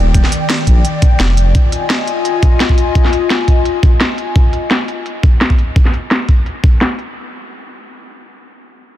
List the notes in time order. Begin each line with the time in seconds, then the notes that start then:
Already playing: D#1 D#3 D5 G5
0.14 D#1, kick, closed hi-hat
0.24 snare
0.32 closed hi-hat
0.50 snare, closed hi-hat
0.67 A#1, kick, closed hi-hat
0.85 closed hi-hat
1.02 kick, closed hi-hat
1.20 F1, snare, closed hi-hat
1.37 F4 D#5 G#5, closed hi-hat
1.55 kick, closed hi-hat
1.72 closed hi-hat
1.90 snare, closed hi-hat
2.07 closed hi-hat
2.25 closed hi-hat
2.43 kick, closed hi-hat
2.60 snare, closed hi-hat
2.69 kick
2.78 closed hi-hat
2.95 kick, closed hi-hat
3.05 snare
3.13 closed hi-hat
3.30 snare, closed hi-hat
3.48 kick, closed hi-hat
3.65 closed hi-hat
3.83 kick, closed hi-hat
4.01 snare, closed hi-hat
4.18 closed hi-hat
4.36 kick, closed hi-hat
4.53 closed hi-hat
4.71 snare, closed hi-hat
4.88 closed hi-hat
5.06 closed hi-hat
5.23 kick, closed hi-hat
5.41 snare, closed hi-hat
5.50 kick
5.59 closed hi-hat
5.76 kick, closed hi-hat
5.85 snare
5.94 closed hi-hat
6.11 snare, closed hi-hat
6.29 kick, closed hi-hat
6.46 closed hi-hat
6.64 kick, closed hi-hat
6.81 snare, closed hi-hat
6.99 closed hi-hat